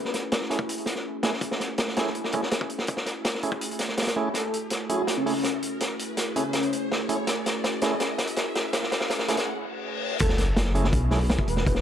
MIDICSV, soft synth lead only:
0, 0, Header, 1, 2, 480
1, 0, Start_track
1, 0, Key_signature, 3, "minor"
1, 0, Tempo, 365854
1, 1862, Time_signature, 4, 2, 24, 8
1, 15497, End_track
2, 0, Start_track
2, 0, Title_t, "Soft synth lead"
2, 0, Program_c, 0, 80
2, 57, Note_on_c, 0, 71, 76
2, 136, Note_off_c, 0, 71, 0
2, 5701, Note_on_c, 0, 69, 87
2, 5989, Note_off_c, 0, 69, 0
2, 6422, Note_on_c, 0, 66, 94
2, 6758, Note_off_c, 0, 66, 0
2, 6784, Note_on_c, 0, 61, 92
2, 7143, Note_off_c, 0, 61, 0
2, 8341, Note_on_c, 0, 61, 89
2, 8821, Note_off_c, 0, 61, 0
2, 13377, Note_on_c, 0, 69, 92
2, 13668, Note_off_c, 0, 69, 0
2, 15059, Note_on_c, 0, 71, 97
2, 15277, Note_off_c, 0, 71, 0
2, 15302, Note_on_c, 0, 71, 85
2, 15379, Note_off_c, 0, 71, 0
2, 15423, Note_on_c, 0, 71, 77
2, 15497, Note_off_c, 0, 71, 0
2, 15497, End_track
0, 0, End_of_file